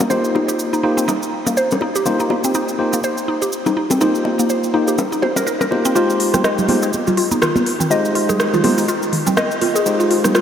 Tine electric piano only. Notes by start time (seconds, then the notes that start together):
0.11 A#3 D#4 F4 G4 C5
0.84 A#3 D#4 F4 G4 C5
2.06 A#3 D#4 F4 G4 C5
2.79 A#3 D#4 F4 G4 C5
4.01 A#3 D#4 F4 G4 C5
4.74 A#3 D#4 F4 G4 C5
5.71 A#3 D#4 F4 G4 C5
5.95 G#3 D#4 F4 G4 C5
6.69 G#3 D#4 F4 G4 C5
7.91 G#3 D#4 F4 G4 C5
8.64 G#3 D#4 F4 G4 C5
9.86 G#3 D#4 F4 G4 C5